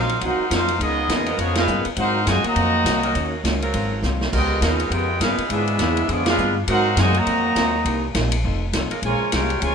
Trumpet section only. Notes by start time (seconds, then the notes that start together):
Already playing: D#4 A#4 C5 F5
0.24 D#4 A#4 C5 F#5
0.53 D#4 A#4 C5 F5
0.81 B3 F4 G#4 D#5
1.40 B3 F4 G#4 C#5
1.57 D#4 G#4 B4 F5
1.98 D#4 A#4 C5 F#5
2.28 F#4 C5 D#5 G#5
2.46 F#4 C5 D#5 A#5
4.34 F4 B4 D#5 G5
4.63 D#4 G#4 B4 F5
4.92 F4 B4 D#5 G5
5.21 D#4 G#4 B4 F5
5.52 D4 G#4 B4 E5
6.11 B3 F4 G#4 D5
6.28 D4 G#4 B4 F5
6.69 D#4 A#4 C5 F#5
6.99 F#4 C5 D#5 G#5
7.17 F#4 C5 D#5 A#5
9.05 F4 A#4 C#5 G#5
9.33 F4 A#4 C#5 G5
9.63 F4 A#4 C#5 G#5